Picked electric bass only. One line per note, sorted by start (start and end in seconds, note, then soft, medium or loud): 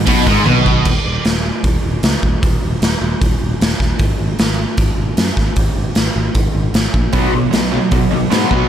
0.07 0.25 B1 medium
0.27 0.45 G#1 medium
0.47 0.83 B1 medium
0.85 0.98 D#1 medium
1.05 1.18 D#1 medium
1.25 1.49 D#1 medium
1.64 1.76 D#1 medium
1.84 1.96 D#1 medium
2.03 2.15 C#2 medium
2.23 2.35 D#1 medium
2.43 2.55 D#1 medium
2.63 2.75 D#1 medium
2.82 2.94 D#1 medium
3.02 3.14 D#1 medium
3.21 3.34 D#1 medium
3.41 3.53 D#1 medium
3.61 3.73 D#1 medium
3.80 3.92 D#1 medium
3.99 4.12 G#1 medium
4.20 4.32 G#1 medium
4.41 4.64 G#1 medium
4.78 4.90 G#1 medium
4.98 5.10 G#1 medium
5.18 5.30 F#2 medium
5.37 5.49 G#1 medium
5.56 5.68 G#1 medium
5.76 5.89 G#1 medium
5.96 6.08 G#1 medium
6.16 6.28 G#1 medium
6.35 6.47 G#1 medium
6.55 6.67 G#1 medium
6.74 6.86 G#1 medium
6.94 7.06 A#1 medium
7.13 7.26 B1 medium
7.34 7.46 B1 medium
7.53 7.77 B1 medium
7.92 8.04 B1 medium
8.12 8.24 B1 medium
8.32 8.44 G#2 medium
8.51 8.63 B1 medium